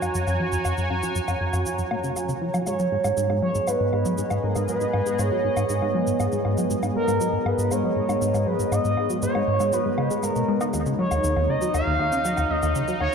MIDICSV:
0, 0, Header, 1, 5, 480
1, 0, Start_track
1, 0, Key_signature, 5, "minor"
1, 0, Tempo, 504202
1, 622, Time_signature, 4, 2, 24, 8
1, 12517, End_track
2, 0, Start_track
2, 0, Title_t, "Analog synth lead"
2, 0, Program_c, 0, 81
2, 2541, Note_on_c, 0, 73, 119
2, 3223, Note_off_c, 0, 73, 0
2, 3260, Note_on_c, 0, 73, 110
2, 3500, Note_on_c, 0, 71, 106
2, 3514, Note_off_c, 0, 73, 0
2, 4221, Note_on_c, 0, 70, 97
2, 4236, Note_off_c, 0, 71, 0
2, 4454, Note_off_c, 0, 70, 0
2, 4460, Note_on_c, 0, 71, 101
2, 4944, Note_on_c, 0, 73, 99
2, 4958, Note_off_c, 0, 71, 0
2, 6142, Note_off_c, 0, 73, 0
2, 6624, Note_on_c, 0, 70, 92
2, 7104, Note_on_c, 0, 71, 90
2, 7118, Note_off_c, 0, 70, 0
2, 7348, Note_on_c, 0, 73, 100
2, 7362, Note_off_c, 0, 71, 0
2, 8064, Note_on_c, 0, 71, 102
2, 8078, Note_off_c, 0, 73, 0
2, 8309, Note_on_c, 0, 75, 119
2, 8323, Note_off_c, 0, 71, 0
2, 8781, Note_off_c, 0, 75, 0
2, 8787, Note_on_c, 0, 73, 107
2, 9265, Note_on_c, 0, 71, 94
2, 9280, Note_off_c, 0, 73, 0
2, 9744, Note_on_c, 0, 70, 82
2, 9758, Note_off_c, 0, 71, 0
2, 10102, Note_off_c, 0, 70, 0
2, 10462, Note_on_c, 0, 73, 93
2, 10944, Note_on_c, 0, 75, 104
2, 10958, Note_off_c, 0, 73, 0
2, 11175, Note_off_c, 0, 75, 0
2, 11181, Note_on_c, 0, 77, 119
2, 11904, Note_on_c, 0, 75, 95
2, 11918, Note_off_c, 0, 77, 0
2, 12143, Note_off_c, 0, 75, 0
2, 12384, Note_on_c, 0, 73, 92
2, 12517, Note_off_c, 0, 73, 0
2, 12517, End_track
3, 0, Start_track
3, 0, Title_t, "Analog synth pad"
3, 0, Program_c, 1, 89
3, 0, Note_on_c, 1, 66, 75
3, 0, Note_on_c, 1, 73, 91
3, 0, Note_on_c, 1, 75, 77
3, 0, Note_on_c, 1, 80, 91
3, 0, Note_on_c, 1, 82, 92
3, 179, Note_off_c, 1, 75, 0
3, 2540, Note_on_c, 1, 56, 68
3, 2756, Note_on_c, 1, 59, 82
3, 2757, Note_on_c, 1, 68, 77
3, 3235, Note_off_c, 1, 82, 0
3, 3252, Note_on_c, 1, 75, 82
3, 3379, Note_off_c, 1, 66, 0
3, 4265, Note_off_c, 1, 80, 0
3, 4302, Note_off_c, 1, 73, 0
3, 10219, Note_on_c, 1, 63, 96
3, 10221, Note_off_c, 1, 56, 0
3, 10221, Note_off_c, 1, 59, 0
3, 11268, Note_on_c, 1, 82, 96
3, 11758, Note_off_c, 1, 68, 0
3, 12517, Note_off_c, 1, 63, 0
3, 12517, Note_off_c, 1, 75, 0
3, 12517, Note_off_c, 1, 82, 0
3, 12517, End_track
4, 0, Start_track
4, 0, Title_t, "Analog synth bass"
4, 0, Program_c, 2, 38
4, 16, Note_on_c, 2, 42, 81
4, 92, Note_off_c, 2, 42, 0
4, 140, Note_on_c, 2, 42, 82
4, 251, Note_off_c, 2, 42, 0
4, 258, Note_on_c, 2, 42, 96
4, 370, Note_off_c, 2, 42, 0
4, 376, Note_on_c, 2, 53, 75
4, 452, Note_off_c, 2, 53, 0
4, 496, Note_on_c, 2, 42, 75
4, 543, Note_off_c, 2, 42, 0
4, 619, Note_on_c, 2, 42, 84
4, 694, Note_off_c, 2, 42, 0
4, 740, Note_on_c, 2, 42, 81
4, 851, Note_off_c, 2, 42, 0
4, 860, Note_on_c, 2, 42, 100
4, 971, Note_off_c, 2, 42, 0
4, 979, Note_on_c, 2, 53, 77
4, 1054, Note_off_c, 2, 53, 0
4, 1098, Note_on_c, 2, 42, 83
4, 1144, Note_off_c, 2, 42, 0
4, 1217, Note_on_c, 2, 42, 74
4, 1293, Note_off_c, 2, 42, 0
4, 1338, Note_on_c, 2, 42, 74
4, 1450, Note_off_c, 2, 42, 0
4, 1457, Note_on_c, 2, 42, 103
4, 1569, Note_off_c, 2, 42, 0
4, 1581, Note_on_c, 2, 53, 77
4, 1655, Note_off_c, 2, 53, 0
4, 1697, Note_on_c, 2, 42, 74
4, 1743, Note_off_c, 2, 42, 0
4, 1818, Note_on_c, 2, 46, 94
4, 1864, Note_off_c, 2, 46, 0
4, 1937, Note_on_c, 2, 49, 79
4, 2012, Note_off_c, 2, 49, 0
4, 2057, Note_on_c, 2, 54, 96
4, 2169, Note_off_c, 2, 54, 0
4, 2175, Note_on_c, 2, 49, 80
4, 2222, Note_off_c, 2, 49, 0
4, 2298, Note_on_c, 2, 53, 75
4, 2373, Note_off_c, 2, 53, 0
4, 2419, Note_on_c, 2, 54, 74
4, 2464, Note_off_c, 2, 54, 0
4, 2540, Note_on_c, 2, 44, 100
4, 2651, Note_off_c, 2, 44, 0
4, 2660, Note_on_c, 2, 54, 79
4, 2734, Note_off_c, 2, 54, 0
4, 2780, Note_on_c, 2, 44, 74
4, 2824, Note_off_c, 2, 44, 0
4, 2897, Note_on_c, 2, 44, 75
4, 2972, Note_off_c, 2, 44, 0
4, 3018, Note_on_c, 2, 44, 83
4, 3130, Note_off_c, 2, 44, 0
4, 3138, Note_on_c, 2, 44, 97
4, 3250, Note_off_c, 2, 44, 0
4, 3259, Note_on_c, 2, 54, 74
4, 3333, Note_off_c, 2, 54, 0
4, 3379, Note_on_c, 2, 44, 75
4, 3424, Note_off_c, 2, 44, 0
4, 3501, Note_on_c, 2, 44, 78
4, 3575, Note_off_c, 2, 44, 0
4, 3621, Note_on_c, 2, 44, 73
4, 3731, Note_off_c, 2, 44, 0
4, 3743, Note_on_c, 2, 44, 94
4, 3852, Note_off_c, 2, 44, 0
4, 3861, Note_on_c, 2, 54, 82
4, 3934, Note_off_c, 2, 54, 0
4, 3980, Note_on_c, 2, 44, 81
4, 4025, Note_off_c, 2, 44, 0
4, 4101, Note_on_c, 2, 44, 75
4, 4174, Note_off_c, 2, 44, 0
4, 4222, Note_on_c, 2, 44, 77
4, 4332, Note_off_c, 2, 44, 0
4, 4340, Note_on_c, 2, 44, 101
4, 4451, Note_off_c, 2, 44, 0
4, 4461, Note_on_c, 2, 54, 86
4, 4534, Note_off_c, 2, 54, 0
4, 4579, Note_on_c, 2, 44, 80
4, 4624, Note_off_c, 2, 44, 0
4, 4699, Note_on_c, 2, 44, 78
4, 4774, Note_off_c, 2, 44, 0
4, 4818, Note_on_c, 2, 44, 80
4, 4930, Note_off_c, 2, 44, 0
4, 4940, Note_on_c, 2, 44, 103
4, 5051, Note_off_c, 2, 44, 0
4, 5060, Note_on_c, 2, 54, 77
4, 5134, Note_off_c, 2, 54, 0
4, 5181, Note_on_c, 2, 44, 76
4, 5225, Note_off_c, 2, 44, 0
4, 5299, Note_on_c, 2, 44, 75
4, 5374, Note_off_c, 2, 44, 0
4, 5420, Note_on_c, 2, 44, 76
4, 5531, Note_off_c, 2, 44, 0
4, 5540, Note_on_c, 2, 44, 97
4, 5651, Note_off_c, 2, 44, 0
4, 5660, Note_on_c, 2, 54, 74
4, 5734, Note_off_c, 2, 54, 0
4, 5780, Note_on_c, 2, 44, 78
4, 5825, Note_off_c, 2, 44, 0
4, 5900, Note_on_c, 2, 44, 85
4, 5974, Note_off_c, 2, 44, 0
4, 6020, Note_on_c, 2, 44, 79
4, 6131, Note_off_c, 2, 44, 0
4, 6141, Note_on_c, 2, 44, 103
4, 6251, Note_off_c, 2, 44, 0
4, 6260, Note_on_c, 2, 54, 76
4, 6334, Note_off_c, 2, 54, 0
4, 6380, Note_on_c, 2, 44, 84
4, 6425, Note_off_c, 2, 44, 0
4, 6499, Note_on_c, 2, 44, 77
4, 6573, Note_off_c, 2, 44, 0
4, 6619, Note_on_c, 2, 44, 77
4, 6730, Note_off_c, 2, 44, 0
4, 6738, Note_on_c, 2, 44, 100
4, 6850, Note_off_c, 2, 44, 0
4, 6858, Note_on_c, 2, 54, 85
4, 6933, Note_off_c, 2, 54, 0
4, 6978, Note_on_c, 2, 44, 77
4, 7024, Note_off_c, 2, 44, 0
4, 7097, Note_on_c, 2, 44, 72
4, 7172, Note_off_c, 2, 44, 0
4, 7217, Note_on_c, 2, 44, 78
4, 7329, Note_off_c, 2, 44, 0
4, 7339, Note_on_c, 2, 44, 102
4, 7450, Note_off_c, 2, 44, 0
4, 7458, Note_on_c, 2, 54, 73
4, 7533, Note_off_c, 2, 54, 0
4, 7578, Note_on_c, 2, 44, 71
4, 7624, Note_off_c, 2, 44, 0
4, 7699, Note_on_c, 2, 44, 76
4, 7774, Note_off_c, 2, 44, 0
4, 7819, Note_on_c, 2, 44, 85
4, 7930, Note_off_c, 2, 44, 0
4, 7938, Note_on_c, 2, 44, 103
4, 8050, Note_off_c, 2, 44, 0
4, 8061, Note_on_c, 2, 54, 78
4, 8134, Note_off_c, 2, 54, 0
4, 8178, Note_on_c, 2, 44, 75
4, 8224, Note_off_c, 2, 44, 0
4, 8298, Note_on_c, 2, 44, 87
4, 8373, Note_off_c, 2, 44, 0
4, 8423, Note_on_c, 2, 44, 81
4, 8532, Note_off_c, 2, 44, 0
4, 8540, Note_on_c, 2, 44, 102
4, 8651, Note_off_c, 2, 44, 0
4, 8660, Note_on_c, 2, 54, 79
4, 8734, Note_off_c, 2, 54, 0
4, 8780, Note_on_c, 2, 44, 88
4, 8825, Note_off_c, 2, 44, 0
4, 8902, Note_on_c, 2, 44, 78
4, 8975, Note_off_c, 2, 44, 0
4, 9021, Note_on_c, 2, 44, 76
4, 9131, Note_off_c, 2, 44, 0
4, 9139, Note_on_c, 2, 44, 102
4, 9250, Note_off_c, 2, 44, 0
4, 9262, Note_on_c, 2, 54, 79
4, 9335, Note_off_c, 2, 54, 0
4, 9380, Note_on_c, 2, 44, 73
4, 9425, Note_off_c, 2, 44, 0
4, 9501, Note_on_c, 2, 49, 73
4, 9611, Note_off_c, 2, 49, 0
4, 9621, Note_on_c, 2, 56, 79
4, 9695, Note_off_c, 2, 56, 0
4, 9739, Note_on_c, 2, 44, 83
4, 9813, Note_off_c, 2, 44, 0
4, 9860, Note_on_c, 2, 47, 74
4, 9934, Note_off_c, 2, 47, 0
4, 9980, Note_on_c, 2, 56, 77
4, 10091, Note_off_c, 2, 56, 0
4, 10100, Note_on_c, 2, 63, 98
4, 10174, Note_off_c, 2, 63, 0
4, 10220, Note_on_c, 2, 39, 101
4, 10331, Note_off_c, 2, 39, 0
4, 10339, Note_on_c, 2, 49, 80
4, 10414, Note_off_c, 2, 49, 0
4, 10460, Note_on_c, 2, 54, 75
4, 10534, Note_off_c, 2, 54, 0
4, 10580, Note_on_c, 2, 39, 78
4, 10654, Note_off_c, 2, 39, 0
4, 10699, Note_on_c, 2, 39, 84
4, 10810, Note_off_c, 2, 39, 0
4, 10819, Note_on_c, 2, 39, 105
4, 10930, Note_off_c, 2, 39, 0
4, 10939, Note_on_c, 2, 49, 72
4, 11014, Note_off_c, 2, 49, 0
4, 11057, Note_on_c, 2, 54, 74
4, 11132, Note_off_c, 2, 54, 0
4, 11177, Note_on_c, 2, 39, 83
4, 11253, Note_off_c, 2, 39, 0
4, 11298, Note_on_c, 2, 39, 75
4, 11410, Note_off_c, 2, 39, 0
4, 11418, Note_on_c, 2, 39, 90
4, 11530, Note_off_c, 2, 39, 0
4, 11540, Note_on_c, 2, 49, 81
4, 11614, Note_off_c, 2, 49, 0
4, 11661, Note_on_c, 2, 54, 81
4, 11735, Note_off_c, 2, 54, 0
4, 11781, Note_on_c, 2, 39, 79
4, 11855, Note_off_c, 2, 39, 0
4, 11902, Note_on_c, 2, 39, 81
4, 12012, Note_off_c, 2, 39, 0
4, 12023, Note_on_c, 2, 39, 98
4, 12132, Note_off_c, 2, 39, 0
4, 12142, Note_on_c, 2, 49, 87
4, 12215, Note_off_c, 2, 49, 0
4, 12261, Note_on_c, 2, 54, 79
4, 12335, Note_off_c, 2, 54, 0
4, 12382, Note_on_c, 2, 39, 72
4, 12455, Note_off_c, 2, 39, 0
4, 12517, End_track
5, 0, Start_track
5, 0, Title_t, "Drums"
5, 22, Note_on_c, 9, 77, 73
5, 22, Note_on_c, 9, 82, 49
5, 117, Note_off_c, 9, 77, 0
5, 117, Note_off_c, 9, 82, 0
5, 140, Note_on_c, 9, 82, 60
5, 235, Note_off_c, 9, 82, 0
5, 260, Note_on_c, 9, 77, 42
5, 260, Note_on_c, 9, 82, 35
5, 355, Note_off_c, 9, 77, 0
5, 355, Note_off_c, 9, 82, 0
5, 499, Note_on_c, 9, 82, 50
5, 594, Note_off_c, 9, 82, 0
5, 618, Note_on_c, 9, 77, 77
5, 618, Note_on_c, 9, 82, 59
5, 713, Note_off_c, 9, 77, 0
5, 713, Note_off_c, 9, 82, 0
5, 739, Note_on_c, 9, 82, 33
5, 834, Note_off_c, 9, 82, 0
5, 859, Note_on_c, 9, 77, 45
5, 955, Note_off_c, 9, 77, 0
5, 979, Note_on_c, 9, 82, 49
5, 1074, Note_off_c, 9, 82, 0
5, 1099, Note_on_c, 9, 82, 63
5, 1194, Note_off_c, 9, 82, 0
5, 1218, Note_on_c, 9, 77, 76
5, 1218, Note_on_c, 9, 82, 37
5, 1314, Note_off_c, 9, 77, 0
5, 1314, Note_off_c, 9, 82, 0
5, 1460, Note_on_c, 9, 77, 48
5, 1460, Note_on_c, 9, 82, 52
5, 1555, Note_off_c, 9, 77, 0
5, 1555, Note_off_c, 9, 82, 0
5, 1580, Note_on_c, 9, 82, 62
5, 1675, Note_off_c, 9, 82, 0
5, 1700, Note_on_c, 9, 82, 34
5, 1795, Note_off_c, 9, 82, 0
5, 1818, Note_on_c, 9, 77, 78
5, 1914, Note_off_c, 9, 77, 0
5, 1940, Note_on_c, 9, 82, 50
5, 2035, Note_off_c, 9, 82, 0
5, 2059, Note_on_c, 9, 77, 44
5, 2059, Note_on_c, 9, 82, 60
5, 2154, Note_off_c, 9, 77, 0
5, 2154, Note_off_c, 9, 82, 0
5, 2180, Note_on_c, 9, 82, 34
5, 2275, Note_off_c, 9, 82, 0
5, 2418, Note_on_c, 9, 77, 81
5, 2418, Note_on_c, 9, 82, 51
5, 2514, Note_off_c, 9, 77, 0
5, 2514, Note_off_c, 9, 82, 0
5, 2538, Note_on_c, 9, 77, 44
5, 2538, Note_on_c, 9, 82, 62
5, 2633, Note_off_c, 9, 77, 0
5, 2633, Note_off_c, 9, 82, 0
5, 2659, Note_on_c, 9, 82, 36
5, 2755, Note_off_c, 9, 82, 0
5, 2898, Note_on_c, 9, 77, 84
5, 2898, Note_on_c, 9, 82, 54
5, 2993, Note_off_c, 9, 77, 0
5, 2993, Note_off_c, 9, 82, 0
5, 3020, Note_on_c, 9, 82, 67
5, 3115, Note_off_c, 9, 82, 0
5, 3140, Note_on_c, 9, 77, 47
5, 3235, Note_off_c, 9, 77, 0
5, 3379, Note_on_c, 9, 82, 55
5, 3474, Note_off_c, 9, 82, 0
5, 3499, Note_on_c, 9, 77, 79
5, 3499, Note_on_c, 9, 82, 66
5, 3594, Note_off_c, 9, 77, 0
5, 3594, Note_off_c, 9, 82, 0
5, 3740, Note_on_c, 9, 77, 47
5, 3835, Note_off_c, 9, 77, 0
5, 3858, Note_on_c, 9, 82, 53
5, 3953, Note_off_c, 9, 82, 0
5, 3978, Note_on_c, 9, 82, 62
5, 4073, Note_off_c, 9, 82, 0
5, 4098, Note_on_c, 9, 77, 84
5, 4098, Note_on_c, 9, 82, 35
5, 4193, Note_off_c, 9, 77, 0
5, 4193, Note_off_c, 9, 82, 0
5, 4337, Note_on_c, 9, 77, 45
5, 4337, Note_on_c, 9, 82, 51
5, 4432, Note_off_c, 9, 77, 0
5, 4432, Note_off_c, 9, 82, 0
5, 4458, Note_on_c, 9, 82, 68
5, 4553, Note_off_c, 9, 82, 0
5, 4577, Note_on_c, 9, 82, 37
5, 4672, Note_off_c, 9, 82, 0
5, 4698, Note_on_c, 9, 77, 82
5, 4793, Note_off_c, 9, 77, 0
5, 4819, Note_on_c, 9, 82, 56
5, 4914, Note_off_c, 9, 82, 0
5, 4940, Note_on_c, 9, 77, 44
5, 4940, Note_on_c, 9, 82, 68
5, 5035, Note_off_c, 9, 77, 0
5, 5035, Note_off_c, 9, 82, 0
5, 5300, Note_on_c, 9, 77, 81
5, 5300, Note_on_c, 9, 82, 55
5, 5395, Note_off_c, 9, 77, 0
5, 5395, Note_off_c, 9, 82, 0
5, 5420, Note_on_c, 9, 82, 65
5, 5515, Note_off_c, 9, 82, 0
5, 5540, Note_on_c, 9, 77, 44
5, 5635, Note_off_c, 9, 77, 0
5, 5778, Note_on_c, 9, 82, 55
5, 5874, Note_off_c, 9, 82, 0
5, 5900, Note_on_c, 9, 77, 81
5, 5900, Note_on_c, 9, 82, 66
5, 5996, Note_off_c, 9, 77, 0
5, 5996, Note_off_c, 9, 82, 0
5, 6019, Note_on_c, 9, 82, 36
5, 6114, Note_off_c, 9, 82, 0
5, 6139, Note_on_c, 9, 77, 47
5, 6234, Note_off_c, 9, 77, 0
5, 6260, Note_on_c, 9, 82, 54
5, 6355, Note_off_c, 9, 82, 0
5, 6382, Note_on_c, 9, 82, 65
5, 6477, Note_off_c, 9, 82, 0
5, 6501, Note_on_c, 9, 77, 77
5, 6501, Note_on_c, 9, 82, 37
5, 6596, Note_off_c, 9, 77, 0
5, 6596, Note_off_c, 9, 82, 0
5, 6741, Note_on_c, 9, 77, 46
5, 6741, Note_on_c, 9, 82, 56
5, 6836, Note_off_c, 9, 77, 0
5, 6836, Note_off_c, 9, 82, 0
5, 6861, Note_on_c, 9, 82, 71
5, 6956, Note_off_c, 9, 82, 0
5, 7103, Note_on_c, 9, 77, 85
5, 7198, Note_off_c, 9, 77, 0
5, 7223, Note_on_c, 9, 82, 57
5, 7318, Note_off_c, 9, 82, 0
5, 7343, Note_on_c, 9, 77, 44
5, 7343, Note_on_c, 9, 82, 70
5, 7439, Note_off_c, 9, 77, 0
5, 7439, Note_off_c, 9, 82, 0
5, 7704, Note_on_c, 9, 77, 80
5, 7704, Note_on_c, 9, 82, 52
5, 7799, Note_off_c, 9, 77, 0
5, 7799, Note_off_c, 9, 82, 0
5, 7823, Note_on_c, 9, 82, 65
5, 7918, Note_off_c, 9, 82, 0
5, 7944, Note_on_c, 9, 77, 44
5, 7944, Note_on_c, 9, 82, 37
5, 8039, Note_off_c, 9, 77, 0
5, 8039, Note_off_c, 9, 82, 0
5, 8183, Note_on_c, 9, 82, 54
5, 8278, Note_off_c, 9, 82, 0
5, 8303, Note_on_c, 9, 77, 74
5, 8303, Note_on_c, 9, 82, 66
5, 8398, Note_off_c, 9, 77, 0
5, 8398, Note_off_c, 9, 82, 0
5, 8423, Note_on_c, 9, 82, 36
5, 8518, Note_off_c, 9, 82, 0
5, 8542, Note_on_c, 9, 77, 43
5, 8637, Note_off_c, 9, 77, 0
5, 8662, Note_on_c, 9, 82, 56
5, 8757, Note_off_c, 9, 82, 0
5, 8780, Note_on_c, 9, 82, 69
5, 8875, Note_off_c, 9, 82, 0
5, 8901, Note_on_c, 9, 77, 76
5, 8996, Note_off_c, 9, 77, 0
5, 9140, Note_on_c, 9, 77, 43
5, 9140, Note_on_c, 9, 82, 55
5, 9236, Note_off_c, 9, 77, 0
5, 9236, Note_off_c, 9, 82, 0
5, 9260, Note_on_c, 9, 82, 68
5, 9355, Note_off_c, 9, 82, 0
5, 9499, Note_on_c, 9, 77, 78
5, 9595, Note_off_c, 9, 77, 0
5, 9621, Note_on_c, 9, 82, 56
5, 9716, Note_off_c, 9, 82, 0
5, 9740, Note_on_c, 9, 77, 44
5, 9740, Note_on_c, 9, 82, 67
5, 9835, Note_off_c, 9, 77, 0
5, 9835, Note_off_c, 9, 82, 0
5, 9861, Note_on_c, 9, 82, 38
5, 9956, Note_off_c, 9, 82, 0
5, 10099, Note_on_c, 9, 77, 73
5, 10099, Note_on_c, 9, 82, 53
5, 10194, Note_off_c, 9, 77, 0
5, 10194, Note_off_c, 9, 82, 0
5, 10220, Note_on_c, 9, 77, 41
5, 10220, Note_on_c, 9, 82, 65
5, 10315, Note_off_c, 9, 77, 0
5, 10315, Note_off_c, 9, 82, 0
5, 10339, Note_on_c, 9, 82, 36
5, 10434, Note_off_c, 9, 82, 0
5, 10579, Note_on_c, 9, 77, 75
5, 10579, Note_on_c, 9, 82, 55
5, 10674, Note_off_c, 9, 77, 0
5, 10674, Note_off_c, 9, 82, 0
5, 10700, Note_on_c, 9, 82, 66
5, 10795, Note_off_c, 9, 82, 0
5, 10818, Note_on_c, 9, 77, 43
5, 10914, Note_off_c, 9, 77, 0
5, 11059, Note_on_c, 9, 82, 55
5, 11154, Note_off_c, 9, 82, 0
5, 11180, Note_on_c, 9, 77, 74
5, 11180, Note_on_c, 9, 82, 67
5, 11275, Note_off_c, 9, 77, 0
5, 11275, Note_off_c, 9, 82, 0
5, 11419, Note_on_c, 9, 77, 43
5, 11514, Note_off_c, 9, 77, 0
5, 11540, Note_on_c, 9, 82, 56
5, 11636, Note_off_c, 9, 82, 0
5, 11661, Note_on_c, 9, 82, 65
5, 11756, Note_off_c, 9, 82, 0
5, 11780, Note_on_c, 9, 77, 75
5, 11780, Note_on_c, 9, 82, 37
5, 11875, Note_off_c, 9, 77, 0
5, 11875, Note_off_c, 9, 82, 0
5, 12020, Note_on_c, 9, 77, 45
5, 12020, Note_on_c, 9, 82, 53
5, 12115, Note_off_c, 9, 77, 0
5, 12115, Note_off_c, 9, 82, 0
5, 12140, Note_on_c, 9, 82, 62
5, 12235, Note_off_c, 9, 82, 0
5, 12260, Note_on_c, 9, 82, 35
5, 12356, Note_off_c, 9, 82, 0
5, 12381, Note_on_c, 9, 77, 77
5, 12476, Note_off_c, 9, 77, 0
5, 12517, End_track
0, 0, End_of_file